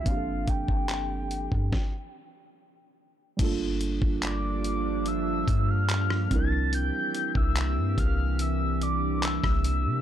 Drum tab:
CC |----------------|x---------------|----------------|
HH |x-x-x-x---------|x-x-x-x-x-x-x-x-|x-x-x-x-x-x-x-x-|
CP |----x-----------|----x-------x---|----x-------x---|
SD |--------o-------|-------------r--|-------------r--|
BD |o-oo---oo-------|o--o------o---o-|---o--o------o--|